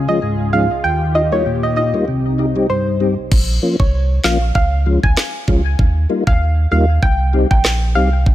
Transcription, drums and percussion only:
3.32 kick loud
3.32 crash medium
3.80 kick loud
4.24 snare loud
4.24 clap loud
4.55 kick medium
5.03 kick medium
5.17 cross-stick medium
5.17 snare loud
5.17 clap medium
5.48 kick medium
5.79 kick loud
6.27 kick loud
7.03 kick loud
7.51 kick medium
7.65 cross-stick medium
7.65 snare loud
7.65 clap medium
8.26 kick loud

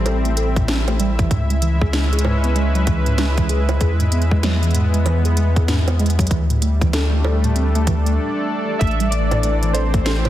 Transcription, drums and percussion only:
0.06 closed hi-hat medium
0.06 high bongo soft
0.25 closed hi-hat soft
0.37 closed hi-hat medium
0.56 kick loud
0.56 closed hi-hat soft
0.68 snare loud
0.68 closed hi-hat medium
0.88 closed hi-hat soft
0.88 high bongo soft
1.00 closed hi-hat medium
1.19 kick loud
1.19 closed hi-hat soft
1.31 kick loud
1.31 closed hi-hat medium
1.50 closed hi-hat soft
1.62 closed hi-hat medium
1.81 kick loud
1.93 snare loud
1.93 closed hi-hat medium
2.13 closed hi-hat soft
2.19 closed hi-hat medium
2.25 high bongo medium
2.44 closed hi-hat soft
2.56 closed hi-hat medium
2.75 closed hi-hat soft
2.87 kick loud
2.87 closed hi-hat medium
3.06 closed hi-hat soft
3.18 snare loud
3.18 closed hi-hat medium
3.38 kick loud
3.38 closed hi-hat soft
3.49 closed hi-hat medium
3.69 closed hi-hat soft
3.69 high bongo medium
3.81 kick medium
3.81 closed hi-hat medium
4.00 closed hi-hat soft
4.12 closed hi-hat medium
4.22 closed hi-hat soft
4.31 kick medium
4.43 snare loud
4.43 closed hi-hat medium
4.63 closed hi-hat soft
4.71 closed hi-hat soft
4.75 closed hi-hat medium
4.94 closed hi-hat soft
5.06 closed hi-hat medium
5.06 high bongo medium
5.25 closed hi-hat soft
5.37 closed hi-hat medium
5.56 kick loud
5.56 closed hi-hat soft
5.68 snare loud
5.68 closed hi-hat medium
5.88 closed hi-hat soft
5.88 high bongo medium
6.00 closed hi-hat soft
6.06 closed hi-hat soft
6.10 closed hi-hat medium
6.19 kick loud
6.19 closed hi-hat medium
6.27 closed hi-hat medium
6.31 kick loud
6.31 closed hi-hat medium
6.50 closed hi-hat soft
6.62 closed hi-hat loud
6.81 kick loud
6.81 closed hi-hat soft
6.93 snare loud
6.93 closed hi-hat medium
7.25 high bongo medium
7.44 closed hi-hat soft
7.56 closed hi-hat medium
7.75 closed hi-hat soft
7.87 kick loud
7.87 closed hi-hat medium
8.06 closed hi-hat soft
8.81 kick loud
8.81 closed hi-hat medium
8.87 closed hi-hat soft
8.91 closed hi-hat soft
9.00 closed hi-hat soft
9.12 closed hi-hat medium
9.31 closed hi-hat soft
9.31 cowbell medium
9.31 high bongo medium
9.43 closed hi-hat medium
9.63 closed hi-hat soft
9.75 closed hi-hat loud
9.75 cowbell medium
9.94 kick loud
9.94 closed hi-hat soft
10.06 snare loud
10.06 closed hi-hat medium
10.25 closed hi-hat soft
10.25 high bongo medium

